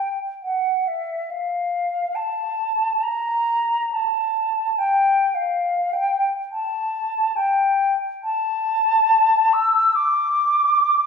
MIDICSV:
0, 0, Header, 1, 2, 480
1, 0, Start_track
1, 0, Tempo, 879765
1, 708, Time_signature, 4, 2, 24, 8
1, 2141, Tempo, 865801
1, 5021, Tempo, 835655
1, 5501, Tempo, 898204
1, 6093, End_track
2, 0, Start_track
2, 0, Title_t, "Flute"
2, 0, Program_c, 0, 73
2, 0, Note_on_c, 0, 79, 49
2, 88, Note_off_c, 0, 79, 0
2, 231, Note_on_c, 0, 78, 47
2, 476, Note_on_c, 0, 76, 46
2, 484, Note_off_c, 0, 78, 0
2, 709, Note_on_c, 0, 77, 54
2, 717, Note_off_c, 0, 76, 0
2, 1173, Note_on_c, 0, 81, 58
2, 1181, Note_off_c, 0, 77, 0
2, 1653, Note_on_c, 0, 82, 62
2, 1661, Note_off_c, 0, 81, 0
2, 2136, Note_off_c, 0, 82, 0
2, 2140, Note_on_c, 0, 81, 58
2, 2616, Note_on_c, 0, 79, 61
2, 2624, Note_off_c, 0, 81, 0
2, 2928, Note_on_c, 0, 77, 55
2, 2936, Note_off_c, 0, 79, 0
2, 3251, Note_on_c, 0, 79, 60
2, 3259, Note_off_c, 0, 77, 0
2, 3466, Note_off_c, 0, 79, 0
2, 3576, Note_on_c, 0, 81, 64
2, 4046, Note_on_c, 0, 79, 63
2, 4054, Note_off_c, 0, 81, 0
2, 4378, Note_off_c, 0, 79, 0
2, 4530, Note_on_c, 0, 81, 74
2, 5256, Note_on_c, 0, 88, 68
2, 5265, Note_off_c, 0, 81, 0
2, 5498, Note_on_c, 0, 86, 72
2, 5507, Note_off_c, 0, 88, 0
2, 6093, Note_off_c, 0, 86, 0
2, 6093, End_track
0, 0, End_of_file